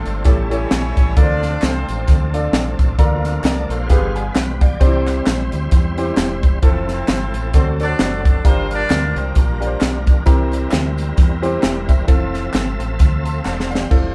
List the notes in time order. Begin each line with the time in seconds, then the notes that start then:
Already playing: A3 C4 D4 F4 A4 C5
0.05 G1, closed hi-hat, tambourine
0.23 A1 A2 A3 C#4 E4 G4 A4 C#5, kick, snare, closed hi-hat, tambourine
0.28 G3 C#4 E4 A4
0.49 C#4 E4 G4 A4 C#5, closed hi-hat, tambourine
0.71 A#1, snare, clap, closed hi-hat, tambourine
0.97 A1, kick, closed hi-hat, tambourine
1.14 D2 D3 E3 D4 F4 A4 A#4 D5, kick, closed hi-hat, tambourine
1.19 C4 A4
1.23 F3 C5
1.43 snare, closed hi-hat, tambourine
1.62 C2 C4 F4 A4 C5, snare, clap, closed hi-hat, tambourine
1.89 A1, closed hi-hat, tambourine
2.08 D2, kick, snare, closed hi-hat, tambourine
2.34 D4 F4 A4 D5, closed hi-hat, tambourine
2.53 A#1, snare, clap, closed hi-hat, tambourine
2.79 A1, kick, closed hi-hat, tambourine
2.98 D2 D3 F3 A#3 D4 F4 A4 A#4, kick, closed hi-hat, tambourine
3.24 snare, closed hi-hat, tambourine
3.43 C2 A4 A#4 D5, snare, clap, closed hi-hat, tambourine
3.68 A#1 F4 A4 C5 F5, closed hi-hat, tambourine
3.86 G1 G2 G3 B3 F4 G4 G#4, kick, snare, closed hi-hat, tambourine
3.91 B4
4.16 F5 G#5, closed hi-hat, tambourine
4.32 B1 F4 B4 G5, snare, clap, closed hi-hat, tambourine
4.60 D5 F5 G5, kick, closed hi-hat, tambourine
4.80 C2 C3 G3 C4 D4 E4 G4 C5, kick, closed hi-hat, tambourine
4.86 E4
5.07 snare, clap, closed hi-hat, tambourine
5.26 A#1, snare, clap, closed hi-hat, tambourine
5.52 D2, closed hi-hat, tambourine
5.71 E2, kick, snare, closed hi-hat, tambourine
5.98 C4 E4 G4 C5, closed hi-hat, tambourine
6.17 E1, snare, clap, closed hi-hat, tambourine
6.43 kick, closed hi-hat, tambourine
6.62 F1 F3 A3 C4 E4 G4 A4, kick, closed hi-hat, tambourine
6.68 A4
6.88 C4 E4 A4 C5, snare, closed hi-hat, tambourine
7.08 G1, snare, clap, closed hi-hat, tambourine
7.34 A1, closed hi-hat, tambourine
7.54 D2 D3 F#3 C4 D4 F#4 A4 C5, kick, snare, closed hi-hat, tambourine
7.80 C4 D4 F#4 A4 D5, closed hi-hat, tambourine
7.99 F#1, snare, clap, closed hi-hat, tambourine
8.25 D4 D5, kick, closed hi-hat, tambourine
8.44 G1 G2 G3 C4 D4 F4 G4 A#4 C5, kick, closed hi-hat, tambourine
8.71 D4 F4 A#4 D5, closed hi-hat, tambourine
8.90 D2, snare, clap, closed hi-hat, tambourine
9.16 C2 C4 C5, closed hi-hat, tambourine
9.35 A#1 A#3 D4 F4 A#4, kick, closed hi-hat, tambourine
9.61 D4 F4 G4 A#4, closed hi-hat, tambourine
9.67 C5
9.80 B1, snare, clap, closed hi-hat, tambourine
10.07 kick, closed hi-hat, tambourine
10.26 C2 C3 G3 C4 E4 G4 A#4, kick, closed hi-hat, tambourine
10.52 closed hi-hat, tambourine
10.71 D2, snare, clap, closed hi-hat, tambourine
10.98 closed hi-hat, tambourine
11.17 E2, kick, snare, closed hi-hat, tambourine
11.42 C4 E4 G4 C5, closed hi-hat, tambourine
11.62 E1 E5 G5, snare, clap, closed hi-hat, tambourine
11.88 C5 E5, kick, closed hi-hat, tambourine
12.07 F1 F3 C4 E4 F4 A4 E5, kick, closed hi-hat, tambourine
12.34 snare, closed hi-hat, tambourine
12.53 G1, snare, clap, closed hi-hat, tambourine
12.79 A1, closed hi-hat, tambourine
12.99 D2, kick, snare, closed hi-hat, tambourine
13.25 A5 C6, closed hi-hat, tambourine
13.44 E1 A4 C5 D5 F5 A5, snare, clap, tambourine
13.60 snare
13.71 G4 C5 D5 F5, tambourine
13.75 snare
13.90 F1 C4 E4 F4 A4, kick, crash